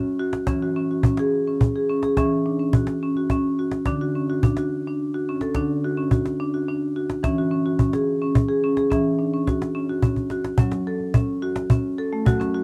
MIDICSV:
0, 0, Header, 1, 3, 480
1, 0, Start_track
1, 0, Tempo, 562852
1, 405, Time_signature, 6, 3, 24, 8
1, 5685, Tempo, 558140
1, 10820, End_track
2, 0, Start_track
2, 0, Title_t, "Marimba"
2, 0, Program_c, 0, 12
2, 0, Note_on_c, 0, 54, 70
2, 0, Note_on_c, 0, 61, 77
2, 166, Note_off_c, 0, 61, 0
2, 167, Note_on_c, 0, 66, 70
2, 374, Note_off_c, 0, 54, 0
2, 406, Note_on_c, 0, 61, 80
2, 407, Note_off_c, 0, 66, 0
2, 411, Note_on_c, 0, 52, 72
2, 526, Note_off_c, 0, 61, 0
2, 533, Note_on_c, 0, 66, 65
2, 649, Note_off_c, 0, 66, 0
2, 650, Note_on_c, 0, 61, 71
2, 768, Note_off_c, 0, 61, 0
2, 775, Note_on_c, 0, 66, 63
2, 891, Note_off_c, 0, 66, 0
2, 897, Note_on_c, 0, 61, 70
2, 1012, Note_off_c, 0, 61, 0
2, 1019, Note_on_c, 0, 68, 70
2, 1253, Note_off_c, 0, 68, 0
2, 1257, Note_on_c, 0, 61, 65
2, 1492, Note_off_c, 0, 61, 0
2, 1499, Note_on_c, 0, 68, 66
2, 1613, Note_off_c, 0, 68, 0
2, 1617, Note_on_c, 0, 61, 67
2, 1732, Note_off_c, 0, 61, 0
2, 1738, Note_on_c, 0, 68, 65
2, 1821, Note_off_c, 0, 52, 0
2, 1852, Note_on_c, 0, 52, 63
2, 1853, Note_off_c, 0, 68, 0
2, 1855, Note_on_c, 0, 61, 82
2, 2091, Note_off_c, 0, 61, 0
2, 2097, Note_on_c, 0, 62, 59
2, 2212, Note_off_c, 0, 62, 0
2, 2213, Note_on_c, 0, 61, 61
2, 2331, Note_off_c, 0, 61, 0
2, 2341, Note_on_c, 0, 66, 58
2, 2575, Note_off_c, 0, 66, 0
2, 2582, Note_on_c, 0, 61, 65
2, 2695, Note_off_c, 0, 61, 0
2, 2700, Note_on_c, 0, 66, 62
2, 2814, Note_off_c, 0, 66, 0
2, 2823, Note_on_c, 0, 61, 68
2, 3056, Note_off_c, 0, 61, 0
2, 3060, Note_on_c, 0, 66, 62
2, 3262, Note_off_c, 0, 52, 0
2, 3295, Note_off_c, 0, 66, 0
2, 3296, Note_on_c, 0, 62, 83
2, 3297, Note_on_c, 0, 50, 70
2, 3413, Note_off_c, 0, 62, 0
2, 3421, Note_on_c, 0, 66, 62
2, 3535, Note_off_c, 0, 66, 0
2, 3542, Note_on_c, 0, 61, 60
2, 3655, Note_off_c, 0, 61, 0
2, 3665, Note_on_c, 0, 66, 68
2, 3777, Note_off_c, 0, 66, 0
2, 3783, Note_on_c, 0, 62, 63
2, 3896, Note_off_c, 0, 62, 0
2, 3907, Note_on_c, 0, 66, 60
2, 4138, Note_off_c, 0, 66, 0
2, 4156, Note_on_c, 0, 62, 62
2, 4383, Note_off_c, 0, 62, 0
2, 4387, Note_on_c, 0, 66, 62
2, 4498, Note_off_c, 0, 66, 0
2, 4511, Note_on_c, 0, 61, 69
2, 4617, Note_on_c, 0, 69, 67
2, 4620, Note_off_c, 0, 61, 0
2, 4704, Note_off_c, 0, 50, 0
2, 4732, Note_on_c, 0, 50, 68
2, 4733, Note_off_c, 0, 69, 0
2, 4741, Note_on_c, 0, 62, 78
2, 4974, Note_off_c, 0, 62, 0
2, 4983, Note_on_c, 0, 66, 68
2, 5093, Note_on_c, 0, 61, 68
2, 5096, Note_off_c, 0, 66, 0
2, 5210, Note_off_c, 0, 61, 0
2, 5217, Note_on_c, 0, 66, 65
2, 5452, Note_off_c, 0, 66, 0
2, 5458, Note_on_c, 0, 62, 74
2, 5572, Note_off_c, 0, 62, 0
2, 5578, Note_on_c, 0, 66, 61
2, 5692, Note_off_c, 0, 66, 0
2, 5700, Note_on_c, 0, 62, 72
2, 5935, Note_off_c, 0, 62, 0
2, 5938, Note_on_c, 0, 66, 70
2, 6142, Note_off_c, 0, 50, 0
2, 6170, Note_on_c, 0, 52, 70
2, 6174, Note_off_c, 0, 66, 0
2, 6178, Note_on_c, 0, 61, 84
2, 6294, Note_off_c, 0, 61, 0
2, 6301, Note_on_c, 0, 66, 62
2, 6412, Note_on_c, 0, 61, 66
2, 6416, Note_off_c, 0, 66, 0
2, 6532, Note_off_c, 0, 61, 0
2, 6537, Note_on_c, 0, 66, 65
2, 6654, Note_off_c, 0, 66, 0
2, 6654, Note_on_c, 0, 61, 65
2, 6773, Note_off_c, 0, 61, 0
2, 6776, Note_on_c, 0, 68, 61
2, 7015, Note_off_c, 0, 68, 0
2, 7018, Note_on_c, 0, 61, 63
2, 7250, Note_on_c, 0, 68, 72
2, 7256, Note_off_c, 0, 61, 0
2, 7372, Note_off_c, 0, 68, 0
2, 7380, Note_on_c, 0, 61, 70
2, 7494, Note_on_c, 0, 68, 61
2, 7497, Note_off_c, 0, 61, 0
2, 7585, Note_off_c, 0, 52, 0
2, 7609, Note_on_c, 0, 61, 87
2, 7614, Note_off_c, 0, 68, 0
2, 7618, Note_on_c, 0, 52, 71
2, 7852, Note_off_c, 0, 61, 0
2, 7853, Note_on_c, 0, 62, 62
2, 7974, Note_off_c, 0, 62, 0
2, 7981, Note_on_c, 0, 61, 63
2, 8098, Note_off_c, 0, 61, 0
2, 8098, Note_on_c, 0, 66, 65
2, 8335, Note_on_c, 0, 61, 73
2, 8336, Note_off_c, 0, 66, 0
2, 8455, Note_off_c, 0, 61, 0
2, 8461, Note_on_c, 0, 66, 62
2, 8577, Note_on_c, 0, 61, 68
2, 8578, Note_off_c, 0, 66, 0
2, 8816, Note_off_c, 0, 61, 0
2, 8823, Note_on_c, 0, 66, 66
2, 9027, Note_off_c, 0, 52, 0
2, 9056, Note_on_c, 0, 54, 72
2, 9058, Note_off_c, 0, 66, 0
2, 9061, Note_on_c, 0, 61, 82
2, 9297, Note_off_c, 0, 61, 0
2, 9302, Note_on_c, 0, 69, 73
2, 9537, Note_off_c, 0, 69, 0
2, 9541, Note_on_c, 0, 61, 70
2, 9776, Note_off_c, 0, 61, 0
2, 9777, Note_on_c, 0, 66, 73
2, 10014, Note_off_c, 0, 66, 0
2, 10018, Note_on_c, 0, 61, 75
2, 10254, Note_off_c, 0, 61, 0
2, 10258, Note_on_c, 0, 69, 74
2, 10374, Note_off_c, 0, 69, 0
2, 10381, Note_on_c, 0, 57, 70
2, 10462, Note_off_c, 0, 54, 0
2, 10491, Note_on_c, 0, 54, 73
2, 10495, Note_off_c, 0, 57, 0
2, 10501, Note_on_c, 0, 66, 92
2, 10615, Note_off_c, 0, 66, 0
2, 10615, Note_on_c, 0, 61, 65
2, 10732, Note_off_c, 0, 61, 0
2, 10741, Note_on_c, 0, 66, 73
2, 10820, Note_off_c, 0, 54, 0
2, 10820, Note_off_c, 0, 66, 0
2, 10820, End_track
3, 0, Start_track
3, 0, Title_t, "Cajon"
3, 280, Note_on_c, 9, 38, 44
3, 366, Note_off_c, 9, 38, 0
3, 399, Note_on_c, 9, 36, 58
3, 399, Note_on_c, 9, 38, 17
3, 484, Note_off_c, 9, 36, 0
3, 484, Note_off_c, 9, 38, 0
3, 881, Note_on_c, 9, 36, 55
3, 966, Note_off_c, 9, 36, 0
3, 1000, Note_on_c, 9, 38, 42
3, 1086, Note_off_c, 9, 38, 0
3, 1370, Note_on_c, 9, 36, 53
3, 1456, Note_off_c, 9, 36, 0
3, 1728, Note_on_c, 9, 38, 39
3, 1813, Note_off_c, 9, 38, 0
3, 1849, Note_on_c, 9, 36, 57
3, 1849, Note_on_c, 9, 38, 17
3, 1935, Note_off_c, 9, 36, 0
3, 1935, Note_off_c, 9, 38, 0
3, 2329, Note_on_c, 9, 36, 54
3, 2415, Note_off_c, 9, 36, 0
3, 2446, Note_on_c, 9, 38, 42
3, 2531, Note_off_c, 9, 38, 0
3, 2688, Note_on_c, 9, 38, 18
3, 2773, Note_off_c, 9, 38, 0
3, 2812, Note_on_c, 9, 36, 55
3, 2812, Note_on_c, 9, 38, 17
3, 2897, Note_off_c, 9, 36, 0
3, 2897, Note_off_c, 9, 38, 0
3, 3167, Note_on_c, 9, 38, 44
3, 3253, Note_off_c, 9, 38, 0
3, 3288, Note_on_c, 9, 36, 53
3, 3288, Note_on_c, 9, 38, 17
3, 3373, Note_off_c, 9, 36, 0
3, 3373, Note_off_c, 9, 38, 0
3, 3778, Note_on_c, 9, 36, 52
3, 3863, Note_off_c, 9, 36, 0
3, 3894, Note_on_c, 9, 38, 42
3, 3979, Note_off_c, 9, 38, 0
3, 4613, Note_on_c, 9, 38, 38
3, 4698, Note_off_c, 9, 38, 0
3, 4729, Note_on_c, 9, 36, 50
3, 4729, Note_on_c, 9, 38, 14
3, 4814, Note_off_c, 9, 36, 0
3, 4814, Note_off_c, 9, 38, 0
3, 5211, Note_on_c, 9, 36, 48
3, 5296, Note_off_c, 9, 36, 0
3, 5335, Note_on_c, 9, 38, 39
3, 5420, Note_off_c, 9, 38, 0
3, 6054, Note_on_c, 9, 38, 43
3, 6140, Note_off_c, 9, 38, 0
3, 6177, Note_on_c, 9, 36, 56
3, 6177, Note_on_c, 9, 38, 17
3, 6263, Note_off_c, 9, 36, 0
3, 6263, Note_off_c, 9, 38, 0
3, 6652, Note_on_c, 9, 36, 49
3, 6738, Note_off_c, 9, 36, 0
3, 6773, Note_on_c, 9, 38, 40
3, 6859, Note_off_c, 9, 38, 0
3, 7135, Note_on_c, 9, 36, 54
3, 7221, Note_off_c, 9, 36, 0
3, 7493, Note_on_c, 9, 38, 39
3, 7579, Note_off_c, 9, 38, 0
3, 7619, Note_on_c, 9, 36, 51
3, 7619, Note_on_c, 9, 38, 17
3, 7705, Note_off_c, 9, 36, 0
3, 7705, Note_off_c, 9, 38, 0
3, 8100, Note_on_c, 9, 36, 51
3, 8100, Note_on_c, 9, 38, 16
3, 8186, Note_off_c, 9, 36, 0
3, 8186, Note_off_c, 9, 38, 0
3, 8223, Note_on_c, 9, 38, 41
3, 8309, Note_off_c, 9, 38, 0
3, 8462, Note_on_c, 9, 38, 16
3, 8548, Note_off_c, 9, 38, 0
3, 8573, Note_on_c, 9, 36, 48
3, 8659, Note_off_c, 9, 36, 0
3, 8693, Note_on_c, 9, 36, 28
3, 8779, Note_off_c, 9, 36, 0
3, 8810, Note_on_c, 9, 38, 38
3, 8896, Note_off_c, 9, 38, 0
3, 8934, Note_on_c, 9, 38, 41
3, 9020, Note_off_c, 9, 38, 0
3, 9047, Note_on_c, 9, 36, 57
3, 9133, Note_off_c, 9, 36, 0
3, 9167, Note_on_c, 9, 38, 43
3, 9253, Note_off_c, 9, 38, 0
3, 9411, Note_on_c, 9, 38, 18
3, 9497, Note_off_c, 9, 38, 0
3, 9533, Note_on_c, 9, 36, 58
3, 9619, Note_off_c, 9, 36, 0
3, 9771, Note_on_c, 9, 38, 19
3, 9857, Note_off_c, 9, 38, 0
3, 9891, Note_on_c, 9, 38, 48
3, 9977, Note_off_c, 9, 38, 0
3, 10012, Note_on_c, 9, 36, 56
3, 10098, Note_off_c, 9, 36, 0
3, 10499, Note_on_c, 9, 36, 59
3, 10585, Note_off_c, 9, 36, 0
3, 10624, Note_on_c, 9, 38, 40
3, 10710, Note_off_c, 9, 38, 0
3, 10820, End_track
0, 0, End_of_file